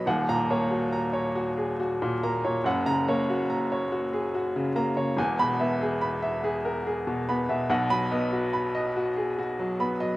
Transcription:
<<
  \new Staff \with { instrumentName = "Upright piano" } { \time 3/4 \key dis \phrygian \tempo 4 = 71 << { r16 ais''8 r2 r16 | r16 ais''8 r2 r16 | r16 b''8 r2 r16 | r16 b''8 r2 r16 | } \\ { fis''8 cis''16 fis'16 ais''16 cis''16 fis'16 gis'16 fis'16 ais,16 ais''16 cis''16 | fis''8 cis''16 fis'16 ais''16 cis''16 fis'16 gis'16 fis'16 cis16 ais''16 cis''16 | gis''8 e''16 gis'16 b''16 e''16 gis'16 ais'16 gis'16 b,16 b''16 e''16 | fis''8 dis''16 fis'16 b''16 dis''16 fis'16 gis'16 fis'16 fis16 b''16 dis''16 | } >> }
  \new Staff \with { instrumentName = "Upright piano" } { \clef bass \time 3/4 \key dis \phrygian <dis,, dis,>16 ais,16 ais8 r4. ais16 ais,16 | <fis,, fis,>16 cis16 ais8 r4. ais16 cis16 | <e,, e,>16 b,16 b8 r4. b16 b,16 | <b,, b,>16 fis16 b8 r4. b16 fis16 | }
>>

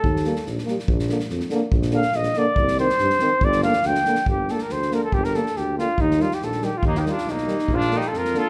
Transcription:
<<
  \new Staff \with { instrumentName = "Flugelhorn" } { \time 2/4 \key g \minor \tempo 4 = 141 a'4 r4 | r2 | r8 f''8 ees''8 d''8~ | d''8 c''4. |
d''8 f''8 g''4 | g'8 a'16 bes'16 c''8 bes'16 a'16 | g'16 bes'16 a'8 g'8 f'8 | ees'8 f'16 g'16 a'8 g'16 f'16 |
ees'16 g'16 f'8 ees'4 | f'8 g'16 a'16 bes'8 a'8 | }
  \new Staff \with { instrumentName = "Trumpet" } { \time 2/4 \key g \minor r2 | r2 | r2 | r2 |
r2 | r2 | r2 | r2 |
bes16 ees'16 d'8 bes4 | d'8 ees'16 f'16 f'8 f'8 | }
  \new Staff \with { instrumentName = "Trombone" } { \time 2/4 \key g \minor r8 bes8 r8 bes8 | r8 bes8 r8 bes8 | r8 bes8 r8 bes8 | r8 c'8 r8 c'8 |
r8 bes8 r8 bes8 | r8 bes8 r8 bes8 | r8 bes8 r8 bes8 | r8 g8 r8 g8 |
r8 g8 r8 g8 | r8 bes8 r8 bes8 | }
  \new Staff \with { instrumentName = "Euphonium" } { \clef bass \time 2/4 \key g \minor r8 g8 r8 g8 | r8 d8 r8 d8 | r8 d8 r8 d8 | r8 ees8 r8 ees8 |
r8 d8 r8 d8 | r8 d8 r8 d8 | r8 d8 r8 d8 | r8 ees8 r8 ees8 |
r8 ees8 r8 ees8 | r8 d8 r8 d8 | }
  \new Staff \with { instrumentName = "Tuba" } { \clef bass \time 2/4 \key g \minor ees,4 bes,,8 r8 | bes,,4 f,8 r8 | bes,,4 bes,,8 r8 | c,4 g,8 r8 |
g,,4 d,8 r8 | g,,4 d,4 | g,,4 d,4 | ees,4 bes,,4 |
ees,4 b,,4 | bes,,4 f,4 | }
  \new DrumStaff \with { instrumentName = "Drums" } \drummode { \time 2/4 bd16 sn16 sn16 sn16 sn16 sn16 sn16 sn16 | bd16 sn16 sn16 sn16 sn16 sn16 sn8 | bd16 sn16 sn16 sn16 sn16 sn16 sn8 | bd16 sn16 sn16 sn16 sn16 sn16 sn8 |
bd16 sn16 sn16 sn16 sn16 sn16 sn16 sn16 | bd8 sn16 sn16 sn16 sn16 sn8 | bd16 sn16 sn16 sn16 sn8 sn8 | bd16 sn16 sn16 sn16 sn16 sn16 sn8 |
bd16 sn16 sn16 sn16 sn16 sn16 sn16 sn16 | bd16 sn16 sn16 sn16 sn16 sn16 sn8 | }
>>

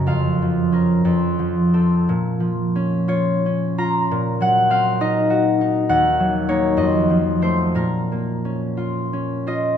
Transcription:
\new Staff \with { instrumentName = "Harp" } { \time 6/8 \key bes \minor \tempo 4. = 60 << { <des'' ees'' f''>2.~ | <des'' ees'' f''>4. des''4 bes''8~ | bes''8 ges''8 f''8 ees''4. | ges''4 des''8 ees''4 c''8 |
bes'2~ bes'8 ees''8 | } \\ { <f, des' bes'>8 f8 <des' bes'>8 f,8 f8 <c' a'>8 | bes,8 f8 des'8 f'8 des'8 f'8 | bes,8 ges8 c'8 ees'8 ges'8 ees'8 | ees,8 ges8 <bes ees'>8 f,8 f8 <a c'>8 |
bes,8 bes8 des'8 f'8 des'8 f'8 | } >> }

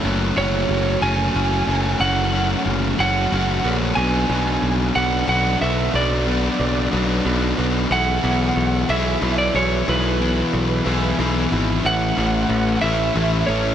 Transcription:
<<
  \new Staff \with { instrumentName = "Electric slide guitar" } { \time 6/8 \key fis \minor \tempo 4. = 61 r8 cis''4 gis''4. | fis''4 r8 fis''4 r8 | gis''4. fis''8 fis''8 e''8 | d''4. r4. |
fis''4. e''8. d''16 cis''8 | b'2 r4 | fis''4. e''4 cis''8 | }
  \new Staff \with { instrumentName = "Distorted electric guitar" } { \time 6/8 \key fis \minor <fis a cis' fis'>8 <fis a cis' fis'>4 <fis a cis' fis'>8 <fis a cis' fis'>8 <fis a cis' fis'>8 | <fis a cis' fis'>8 <fis a cis' fis'>4 <fis a cis' fis'>8 <fis a cis' fis'>8 <fis a cis' fis'>8 | <b, fis b d' fis'>8 <b, fis b d' fis'>4 <b, fis b d' fis'>8 <b, fis b d' fis'>8 <b, fis b d' fis'>8 | <b, fis b d' fis'>8 <b, fis b d' fis'>4 <b, fis b d' fis'>8 <b, fis b d' fis'>8 <b, fis b d' fis'>8 |
<b, e b e' gis'>8 <b, e b e' gis'>4 <b, e b e' gis'>8 <b, e b e' gis'>8 <b, e b e' gis'>8 | <b, e b e' gis'>8 <b, e b e' gis'>4 <b, e b e' gis'>8 <b, e b e' gis'>8 <b, e b e' gis'>8 | <a, e a cis' e'>8 <a, e a cis' e'>4 <a, e a cis' e'>8 <a, e a cis' e'>8 <a, e a cis' e'>8 | }
  \new Staff \with { instrumentName = "Picked electric bass" } { \clef bass \time 6/8 \key fis \minor fis,,8 fis,,8 fis,,8 fis,,8 fis,,8 fis,,8 | fis,,4 fis,,8 fis,,8 fis,,8 bes,,8 | b,,8 b,,8 b,,8 b,,8 b,,8 b,,8 | b,,4 b,,8 b,,8 b,,8 b,,8 |
b,,8 b,,8 b,,8 b,,8 b,,8 b,,8 | b,,4 b,,8 b,,8 b,,8 gis,,8 | a,,8 a,,8 a,,8 a,,8 a,,8 a,,8 | }
>>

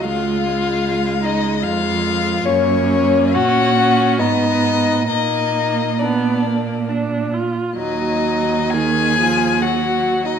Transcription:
<<
  \new Staff \with { instrumentName = "Violin" } { \time 3/4 \key ees \minor \tempo 4 = 69 f''4. ees''8 f''4 | des''4 ges''4 ees''4 | ees''4 d''4 r4 | ees''4 aes''4 ges''8. ees''16 | }
  \new Staff \with { instrumentName = "Violin" } { \time 3/4 \key ees \minor f'4. ees'8 f'4 | des'4 ges'4 ees'4 | ees'4 d'4 r4 | ees'4 aes'4 ges'8. ees'16 | }
  \new Staff \with { instrumentName = "Viola" } { \time 3/4 \key ees \minor aes8 aes2~ aes8 | bes4 des'8 des'8 ces'4 | bes4 ces'8 bes8 d'8 f'8 | ges4 ees8 f8 ges4 | }
  \new Staff \with { instrumentName = "Cello" } { \clef bass \time 3/4 \key ees \minor des,2 f,4 | ges,4 bes,4 aes,4 | bes,2~ bes,8. r16 | ees,2. | }
>>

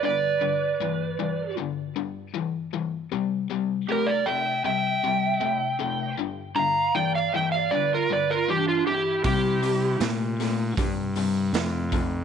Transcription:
<<
  \new Staff \with { instrumentName = "Electric slide guitar" } { \time 4/4 \key g \mixolydian \tempo 4 = 78 d''2 r2 | r4 bes'16 d''16 g''8 g''2 | r8 bes''8 g''16 f''16 g''16 f''16 d''16 bes'16 d''16 bes'16 g'16 f'16 g'8 | g'4 r2. | }
  \new Staff \with { instrumentName = "Lead electric guitar" } { \time 4/4 \key g \mixolydian b'2 r2 | r4 g'16 bes'16 e''8 e''2 | r8 f''8 d''16 d''16 e''16 d''16 b'16 f'16 b'16 f'16 d'16 d'16 e'8 | e'4 r2. | }
  \new Staff \with { instrumentName = "Overdriven electric guitar" } { \clef bass \time 4/4 \key g \mixolydian <g, d>8 <g, d>8 <g, e>8 <g, e>8 <g, d>8 <g, d>8 <g, e>8 <g, e>8 | <c g>8 <c g>8 <c a>8 <c a>8 <c g>8 <c g>8 <c a>8 <c a>8 | <g, d>8 <g, d>8 <g, e>8 <g, e>8 <g, d>8 <g, d>8 <g, e>8 <g, e>8 | <c g>8 <c g>8 <c a>8 <c a>8 <c g>8 <c g>8 <c a>8 <c a>8 | }
  \new Staff \with { instrumentName = "Fingered electric bass" } { \clef bass \time 4/4 \key g \mixolydian r1 | r1 | r1 | c4 bes,4 g,4 f,4 | }
  \new DrumStaff \with { instrumentName = "Drums" } \drummode { \time 4/4 r4 r4 r4 r4 | r4 r4 r4 r4 | r4 r4 r4 r4 | <hho bd>8 hho8 <hho sn>8 <hho sn>8 <hho bd>8 hho8 <hho sn>8 <hho bd>8 | }
>>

